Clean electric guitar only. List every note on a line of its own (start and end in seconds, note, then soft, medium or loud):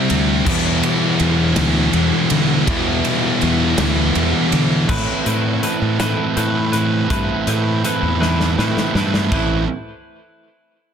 4.88 5.26 A3 medium
4.88 5.26 C4 medium
4.88 5.25 E4 medium
4.88 5.25 B4 loud
5.26 5.61 A3 medium
5.26 5.61 C4 medium
5.26 5.62 E4 medium
5.26 5.62 B4 medium
5.62 6.00 A3 medium
5.62 5.99 C4 medium
5.62 5.99 E4 medium
5.62 5.98 B4 medium
6.00 6.35 A3 medium
6.00 6.35 C4 medium
6.00 6.36 E4 medium
6.00 6.36 B4 medium
6.36 6.73 A3 medium
6.36 6.73 C4 medium
6.36 6.72 E4 medium
6.36 6.71 B4 medium
6.72 7.08 A3 medium
6.72 7.09 C4 medium
6.72 7.09 E4 medium
6.72 7.09 B4 medium
7.10 7.47 A3 medium
7.10 7.47 C4 medium
7.10 7.47 E4 loud
7.10 7.46 B4 loud
7.47 7.82 A3 medium
7.47 7.83 C4 medium
7.47 7.83 E4 medium
7.47 7.84 B4 medium
7.84 8.21 A3 medium
7.84 8.20 C4 medium
7.84 8.20 E4 medium
7.84 8.19 B4 medium
8.20 8.56 A3 medium
8.20 8.57 C4 medium
8.20 8.57 E4 medium
8.20 8.58 B4 loud
8.58 8.95 A3 medium
8.58 8.94 C4 medium
8.58 8.94 E4 medium
8.58 8.94 B4 medium
8.95 9.31 A3 medium
8.95 9.32 C4 medium
8.95 9.32 E4 medium
8.95 9.32 B4 medium
9.32 9.62 A2 medium
9.32 9.62 E3 loud
9.32 9.62 A3 loud
9.32 9.62 C4 loud
9.32 9.62 E4 loud
9.32 9.62 B4 loud